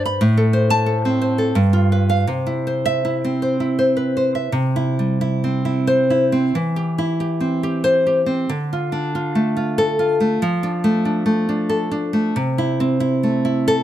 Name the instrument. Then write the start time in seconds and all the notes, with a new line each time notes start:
nylon-string guitar
Already playing: G2 B4 C5
0.06 B5
0.21 A2
0.37 A4
0.53 C5
0.70 A5
0.86 A4
1.05 C4
1.21 C5
1.38 A4
1.55 G2
1.73 F4
1.92 B4
2.10 F5
2.27 C3
2.47 E4
2.67 C5
2.85 E5
3.05 E4
3.25 C4
3.42 C5
3.60 E4
3.79 C5
3.97 B4
4.17 C5
4.35 E5
4.52 C3
4.76 E4
4.99 G3
5.21 E4
5.44 C4
5.65 E4
5.87 C5
6.10 E4
6.32 C4
6.55 E3
6.76 G4
6.98 E4
7.20 G4
7.40 C4
7.63 G4
7.84 C5
8.07 G4
8.26 C4
8.49 D3
8.73 F4
8.92 D4
9.15 F4
9.35 A3
9.57 F4
9.78 A4
9.99 F4
10.20 A3
10.42 F3
10.63 D4
10.84 A3
11.05 D4
11.26 A3
11.49 D4
11.69 A4
11.91 D4
12.13 A3
12.36 C3
12.58 E4
12.80 C4
13.00 E4
13.23 A3
13.45 E4
13.68 A4